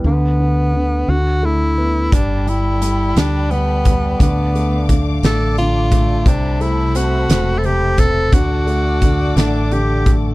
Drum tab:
HH |------|xxxxxx|xxxxxx|xxxxxx|
SD |------|---o--|---o--|---o--|
BD |------|o----o|o-o--o|o----o|

HH |xxxxxx|
SD |---o--|
BD |o-o--o|